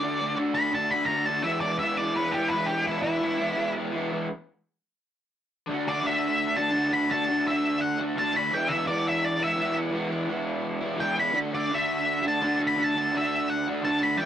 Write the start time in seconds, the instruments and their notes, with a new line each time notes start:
Already playing: lead electric guitar D5
0.00 overdriven electric guitar D3 A3 D4 F#4
0.16 overdriven electric guitar D4 F#4
0.21 overdriven electric guitar A3
0.36 overdriven electric guitar D3 A3 D4
0.40 overdriven electric guitar F#4
0.55 overdriven electric guitar A3 D4 F#4, lead electric guitar B5
0.59 overdriven electric guitar D3
0.71 overdriven electric guitar D3 A3 D4, lead electric guitar A5
0.76 overdriven electric guitar F#4
0.91 overdriven electric guitar A3 D4 F#4, lead electric guitar B5
1.06 overdriven electric guitar D3 A3 D4, lead electric guitar A#5
1.10 overdriven electric guitar F#4
1.25 overdriven electric guitar D4 F#4, lead electric guitar A5
1.30 overdriven electric guitar A3
1.42 overdriven electric guitar E3 G#3 B3, lead electric guitar E5
1.48 overdriven electric guitar E4
1.61 overdriven electric guitar B3 E4, lead electric guitar D5
1.67 overdriven electric guitar G#3
1.79 overdriven electric guitar E3 G#3 B3, lead electric guitar E5
1.85 overdriven electric guitar E4
1.97 overdriven electric guitar G#3 B3 E4, lead electric guitar D5
2.02 overdriven electric guitar E3
2.16 overdriven electric guitar E3 G#3 B3 E4, lead electric guitar B4
2.32 overdriven electric guitar E4, lead electric guitar G4
2.36 overdriven electric guitar G#3 B3
2.48 overdriven electric guitar E3, lead electric guitar B4
2.53 overdriven electric guitar G#3 B3 E4
2.66 overdriven electric guitar E4, lead electric guitar G4
2.73 overdriven electric guitar G#3 B3
2.86 overdriven electric guitar E3 G#3 B3, lead electric guitar E4
2.90 overdriven electric guitar E4
3.02 overdriven electric guitar B3 E4, lead electric guitar E4
3.06 overdriven electric guitar G#3
3.21 overdriven electric guitar E3 G#3 B3 E4
3.37 overdriven electric guitar E3 G#3 B3 E4
3.55 overdriven electric guitar E3 G#3 B3
3.60 overdriven electric guitar E4
3.75 overdriven electric guitar B3 E4
3.79 overdriven electric guitar G#3
3.92 overdriven electric guitar E3 G#3 B3
3.96 overdriven electric guitar E4
4.10 overdriven electric guitar G#3 B3 E4
5.66 overdriven electric guitar D3 A3 D4
5.72 overdriven electric guitar F#4
5.85 overdriven electric guitar D4 F#4, lead electric guitar D5
5.90 overdriven electric guitar A3
6.01 overdriven electric guitar D3 A3 D4
6.06 overdriven electric guitar F#4, lead electric guitar E5
6.56 overdriven electric guitar D4 F#4, lead electric guitar A5
6.60 overdriven electric guitar A3
6.71 overdriven electric guitar D3 A3 D4
6.76 overdriven electric guitar F#4
6.89 overdriven electric guitar D4 F#4
6.93 overdriven electric guitar A3, lead electric guitar B5
7.09 overdriven electric guitar D3 A3 D4, lead electric guitar A5
7.13 overdriven electric guitar F#4
7.26 overdriven electric guitar D4 F#4
7.31 overdriven electric guitar A3
7.46 overdriven electric guitar D3 A3 D4 F#4, lead electric guitar E5
7.81 lead electric guitar F#5
7.98 overdriven electric guitar D4 F#4
8.03 overdriven electric guitar A3
8.15 overdriven electric guitar D3 A3 D4, lead electric guitar A5
8.20 overdriven electric guitar F#4
8.34 overdriven electric guitar D4 F#4, lead electric guitar B5
8.38 overdriven electric guitar A3
8.51 overdriven electric guitar E3 G#3 B3, lead electric guitar G5
8.56 overdriven electric guitar E4
8.68 overdriven electric guitar B3 E4, lead electric guitar E5
8.73 overdriven electric guitar G#3
8.85 overdriven electric guitar E3 G#3 B3, lead electric guitar D5
8.89 overdriven electric guitar E4
9.08 lead electric guitar E5
9.25 lead electric guitar D5
9.39 overdriven electric guitar B3 E4
9.43 overdriven electric guitar G#3, lead electric guitar E5
9.56 overdriven electric guitar E3 G#3 B3
9.61 overdriven electric guitar E4
9.72 overdriven electric guitar B3 E4
9.77 overdriven electric guitar G#3
9.91 overdriven electric guitar E3 G#3 B3
9.96 overdriven electric guitar E4
10.08 overdriven electric guitar B3 E4
10.13 overdriven electric guitar G#3
10.28 overdriven electric guitar E3 G#3 B3 E4
10.80 overdriven electric guitar B3 E4
10.85 overdriven electric guitar G#3
10.96 overdriven electric guitar E3 G#3 B3, lead electric guitar G5
11.01 overdriven electric guitar E4
11.15 overdriven electric guitar B3 E4
11.20 overdriven electric guitar G#3, lead electric guitar B5
11.32 overdriven electric guitar D3 A3 D4
11.37 overdriven electric guitar F#4
11.51 overdriven electric guitar D4 F#4, lead electric guitar D5
11.55 overdriven electric guitar A3
11.70 overdriven electric guitar D3 A3 D4 F#4
11.74 lead electric guitar E5
12.22 overdriven electric guitar D4 F#4
12.27 overdriven electric guitar A3, lead electric guitar A5
12.41 overdriven electric guitar D3 A3 D4
12.45 overdriven electric guitar F#4
12.58 overdriven electric guitar D4 F#4
12.62 overdriven electric guitar A3
12.67 lead electric guitar B5
12.76 overdriven electric guitar D3 A3 D4 F#4
12.84 lead electric guitar A5
12.94 overdriven electric guitar D4 F#4
12.98 overdriven electric guitar A3
13.11 overdriven electric guitar D3 A3 D4
13.15 overdriven electric guitar F#4, lead electric guitar E5
13.50 lead electric guitar F#5
13.67 overdriven electric guitar A3 D4 F#4
13.82 overdriven electric guitar D3 A3 D4, lead electric guitar A5
13.86 overdriven electric guitar F#4
14.00 overdriven electric guitar D4 F#4, lead electric guitar B5
14.05 overdriven electric guitar A3
14.17 overdriven electric guitar E3 G#3 B3 E4, lead electric guitar G5